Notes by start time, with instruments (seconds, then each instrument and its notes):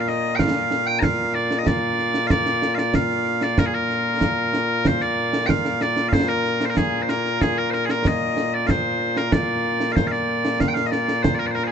Already playing: bagpipes A#2 A#3 F4
0.08 bagpipes D#5, snare
0.35 bagpipes F5 G5, concert bass drum, snare
0.71 snare
0.87 bagpipes G5
0.99 bagpipes F5 A#5, concert bass drum, snare
1.34 bagpipes D5, snare
1.51 snare
1.58 bagpipes D#5
1.67 bagpipes D5, concert bass drum, snare
1.98 snare
2.14 snare
2.27 bagpipes D5 F5, concert bass drum, snare
2.46 snare
2.62 snare
2.75 bagpipes D5 F5, snare
2.94 bagpipes F5, concert bass drum, snare
3.10 snare
3.26 snare
3.41 bagpipes D5, snare
3.58 bagpipes A#4, concert bass drum, snare
3.66 bagpipes G#4
3.74 bagpipes A#4
3.90 snare
4.21 concert bass drum, snare
4.54 snare
4.85 bagpipes C5, concert bass drum, snare
5.01 bagpipes D5, snare
5.33 snare
5.46 bagpipes F5 G5, concert bass drum, snare
5.65 snare
5.81 bagpipes D5, snare
5.97 snare
6.08 bagpipes F5
6.13 bagpipes C5, concert bass drum, snare
6.28 bagpipes A#4
6.45 snare
6.61 snare
6.65 bagpipes C5
6.70 bagpipes A#4
6.77 bagpipes G#4, concert bass drum, snare
7.02 bagpipes C5
7.09 bagpipes A#4, snare
7.25 snare
7.41 bagpipes G#4, concert bass drum, snare
7.58 bagpipes A#4
7.70 bagpipes A#4 C5, snare
7.85 bagpipes G#4, snare
7.90 bagpipes A#4
8.05 bagpipes D#5, concert bass drum, snare
8.37 snare
8.54 bagpipes D5
8.67 bagpipes C5 F5, concert bass drum, snare
9.17 bagpipes A#4, snare
9.32 bagpipes D5, concert bass drum, snare
9.80 snare
9.92 bagpipes C5 F5
9.97 concert bass drum, snare
10.07 bagpipes F5
10.11 bagpipes D5, snare
10.45 snare
10.60 bagpipes F5, concert bass drum, snare
10.68 bagpipes G5
10.74 bagpipes F5, snare
10.86 bagpipes D#5
10.91 bagpipes D5, snare
11.08 snare
11.23 bagpipes C5, concert bass drum, snare
11.35 bagpipes D5
11.39 bagpipes A#4
11.47 bagpipes D5
11.51 bagpipes A#4 C5
11.56 snare
11.64 bagpipes G#4 C5